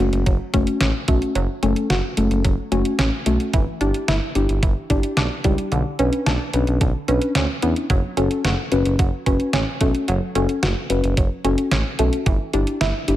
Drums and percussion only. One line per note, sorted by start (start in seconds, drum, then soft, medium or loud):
0.13 closed hi-hat soft
0.26 kick medium
0.26 closed hi-hat medium
0.54 kick medium
0.54 closed hi-hat medium
0.67 closed hi-hat medium
0.81 snare loud
0.81 closed hi-hat medium
1.08 kick medium
1.08 closed hi-hat medium
1.22 closed hi-hat soft
1.35 closed hi-hat medium
1.63 closed hi-hat medium
1.76 closed hi-hat soft
1.90 snare loud
1.90 closed hi-hat medium
2.17 closed hi-hat medium
2.31 closed hi-hat soft
2.45 kick medium
2.45 closed hi-hat medium
2.72 closed hi-hat medium
2.85 closed hi-hat medium
2.99 snare loud
2.99 closed hi-hat medium
3.26 closed hi-hat medium
3.40 closed hi-hat soft
3.53 kick loud
3.53 closed hi-hat medium
3.81 closed hi-hat medium
3.94 closed hi-hat soft
4.08 snare loud
4.08 closed hi-hat medium
4.35 closed hi-hat medium
4.49 closed hi-hat soft
4.63 kick medium
4.63 closed hi-hat medium
4.90 kick loud
4.90 closed hi-hat medium
5.03 closed hi-hat medium
5.17 snare loud
5.17 closed hi-hat medium
5.44 kick medium
5.44 closed hi-hat medium
5.58 closed hi-hat soft
5.72 closed hi-hat medium
5.99 closed hi-hat medium
6.13 closed hi-hat soft
6.26 snare loud
6.26 closed hi-hat medium
6.53 closed hi-hat medium
6.67 closed hi-hat soft
6.81 kick medium
6.81 closed hi-hat medium
7.08 closed hi-hat medium
7.22 closed hi-hat medium
7.35 snare loud
7.35 closed hi-hat medium
7.62 closed hi-hat medium
7.76 closed hi-hat soft
7.90 kick loud
7.90 closed hi-hat medium
8.17 closed hi-hat medium
8.31 closed hi-hat soft
8.45 snare loud
8.45 closed hi-hat medium
8.72 closed hi-hat medium
8.85 closed hi-hat soft
8.99 kick medium
8.99 closed hi-hat medium
9.26 kick medium
9.26 closed hi-hat medium
9.40 closed hi-hat medium
9.53 snare loud
9.53 closed hi-hat medium
9.81 kick medium
9.81 closed hi-hat medium
9.95 closed hi-hat soft
10.08 closed hi-hat medium
10.35 closed hi-hat medium
10.49 closed hi-hat soft
10.63 snare loud
10.63 closed hi-hat medium
10.90 closed hi-hat medium
11.04 closed hi-hat soft
11.17 kick medium
11.17 closed hi-hat medium
11.45 closed hi-hat medium
11.58 closed hi-hat medium
11.71 snare loud
11.71 closed hi-hat medium
11.99 closed hi-hat medium
12.13 closed hi-hat soft
12.26 kick loud
12.26 closed hi-hat medium
12.53 closed hi-hat medium
12.67 closed hi-hat soft
12.81 snare loud
12.81 closed hi-hat medium
13.08 closed hi-hat medium